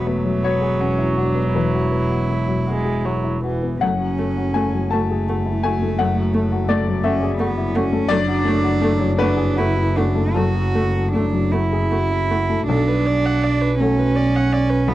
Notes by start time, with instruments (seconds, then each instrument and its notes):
Already playing: double bass E1, upright piano E2 B3 F#4 E5, viola F#3
0.07 cello A3, upright piano B3
0.25 upright piano F#3
0.43 cello B3, upright piano F#4 C#5
0.61 upright piano G#4
0.80 cello C#4, upright piano F#4
0.98 upright piano E4
1.17 cello D4, upright piano F#4
1.35 upright piano B3
1.54 upright piano E2 B4, cello E4
1.74 upright piano F#4
1.91 upright piano B3
2.10 upright piano F#4
2.29 upright piano B3
2.48 upright piano F#3
2.67 viola G#3, upright piano F#4
2.85 upright piano G#4
3.04 viola F#3, upright piano F#4
3.24 upright piano E4
3.43 viola E3, upright piano F#4
3.63 upright piano B3
3.80 double bass F#1, upright piano F#2 F#5, viola A3, cello C#4
4.00 upright piano F#4
4.18 viola A3, upright piano A3
4.37 upright piano F#4
4.54 viola A3, upright piano A3 G#5
4.74 upright piano F#3
4.91 cello A3, viola A3, upright piano F#4 A5
5.11 upright piano G#4
5.28 viola A3, upright piano F#4
5.46 upright piano E4
5.63 viola A3, upright piano F#4 G#5
5.82 upright piano A3
5.99 upright piano F#2 F#5, viola A3
6.17 upright piano F#4
6.34 viola A3, upright piano A3
6.52 upright piano F#4
6.69 viola A3, upright piano A3 D5
6.87 upright piano F#3
7.04 viola A3, cello C#4, upright piano F#4 E5
7.23 upright piano G#4
7.39 viola A3, cello B3, upright piano F#4
7.58 upright piano E4
7.75 viola A3, cello C#4, upright piano F#4
7.93 upright piano A3
8.09 double bass F#1, upright piano F#2 D5, viola A3, cello D4
8.28 upright piano F#4
8.45 upright piano A3, viola A3
8.63 upright piano F#4
8.82 upright piano A3, viola A3
9.00 upright piano F#3
9.18 viola A3, cello D4, upright piano F#4 B4
9.36 upright piano G#4
9.56 viola A3, cello E4, upright piano F#4
9.76 upright piano E4
9.96 viola A3, cello D4, upright piano F#4
10.15 upright piano A3
10.34 upright piano F#2 A4, viola A3, cello F#4
10.55 upright piano F#4
10.75 viola A3, upright piano A3
10.95 upright piano F#4
11.13 upright piano A3, viola A3, cello D4
11.33 upright piano F#3
11.51 viola A3, cello E4, upright piano F#4
11.72 upright piano G#4
11.91 viola A3, upright piano F#4
12.11 upright piano E4
12.31 viola A3, upright piano F#4
12.49 upright piano A3
12.68 upright piano B1, double bass B1, cello D4, viola A4
12.88 viola B4
13.07 viola D5
13.25 viola F#5
13.43 viola D5
13.61 viola B4
13.79 upright piano F#3 A3 F#4, cello C#4, viola A4
13.98 viola B4
14.16 viola D5
14.36 viola F#5
14.53 viola D5
14.70 viola B4
14.88 upright piano B1, cello B3, viola A4